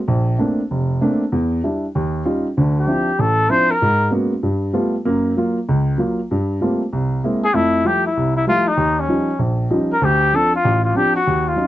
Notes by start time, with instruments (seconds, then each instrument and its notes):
0.08 grand piano A#1
0.38 grand piano A3 A#3 C4 D4
0.71 grand piano F1
1.01 grand piano A3 A#3 C4 D4
1.32 grand piano E2
1.63 grand piano G3 D4 E4
1.95 grand piano D#2
2.25 grand piano G3 C#4 D#4 F4
2.57 grand piano D2 D3
2.79 trumpet G4
2.87 grand piano F3 C4 D4 E4
3.19 grand piano A1, trumpet A4
3.50 grand piano F3 C4 D4 E4, trumpet C5
3.71 trumpet A#4
3.82 grand piano G#2
4.11 grand piano G#3 A#3 B3 C#4 F#4
4.43 grand piano G2
4.73 grand piano G3 A3 B3 F4
5.05 grand piano F#2 A#3
5.37 grand piano F#3 A#3 F4
5.69 grand piano C#2
5.98 grand piano F#3 A#3 F4
6.31 grand piano G2
6.61 grand piano G3 A3 A#3 C4 F4
6.93 grand piano C2
7.24 grand piano G#3 A#3 C4 E4
7.44 trumpet G#4
7.54 grand piano F2 A3, trumpet E4
7.85 grand piano F3 G3 A3 E4, trumpet G4
8.06 trumpet E4
8.17 grand piano C2
8.37 trumpet E4
8.47 grand piano F3 G3 A3 E4, trumpet F4
8.68 trumpet D#4
8.77 grand piano D#2
9.00 trumpet C#4
9.09 grand piano F3 G3 C#4 D#4
9.39 grand piano A#1
9.70 grand piano F3 G3 C#4 D#4
9.93 trumpet A#4
10.01 grand piano D2, trumpet G4
10.33 grand piano F3 C4 D4, trumpet A4
10.55 trumpet F4
10.65 grand piano A1
10.84 trumpet F4
10.95 grand piano F3 C4 D4, trumpet G4
11.16 trumpet F#4
11.27 grand piano D#2
11.48 trumpet F4
11.56 grand piano F#3 C#4 D#4